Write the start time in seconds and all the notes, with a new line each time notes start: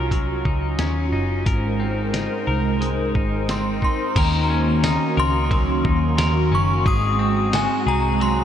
Already playing: C2 C#4 D#4 F4 F#4 A#4
0.11 F#3, kick, closed hi-hat
0.45 C#2 D#4, kick
0.78 D#2 C#4, snare, closed hi-hat
1.12 F#1 D#4
1.46 G#1 G#2 G#3 D#4 A#4 C5, kick, closed hi-hat
1.80 C4
2.13 D#4, snare, closed hi-hat
2.47 C2 A#4
2.81 G#3, closed hi-hat
3.15 G#1 D#4, kick
3.49 C4 C6, snare, closed hi-hat
3.82 D#4 C6, kick
4.16 D#2 D#3 A#3 C#4 F#4 A#4 A#5, kick, crash, ride
4.50 C#4
4.84 D#4, snare, ride, tambourine
5.17 C#2 A#4 C6
5.51 F#3, kick, ride
5.85 D#2 D#4, kick
6.18 D#2 A#4, snare, ride, tambourine
6.51 F#1 C#4 C#6
6.85 G#1 G#2 G#3 C4 G#4 D#6, kick, ride
7.19 C4
7.53 F#4 G#5, snare, ride, tambourine
7.87 C2 G#4 A#5
8.20 F#3 C6, ride